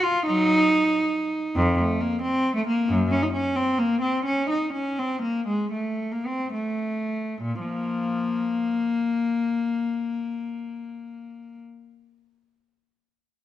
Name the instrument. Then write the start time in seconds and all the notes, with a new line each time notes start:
cello
0.02 F4
0.25 F#3 D#4
1.56 F2
1.78 A3
2.01 A#3
2.22 C4
2.56 A3
2.67 A#3
2.89 F#2
3.10 C#4
3.22 D#4
3.33 C#4
3.55 C4
3.79 A#3
4.01 C4
4.25 C#4
4.50 D#4
4.73 C#4
4.98 C4
5.22 A#3
5.47 G#3
5.72 A3
6.12 A#3
6.26 C4
6.53 A3
7.42 A#2
7.60 F3 A#3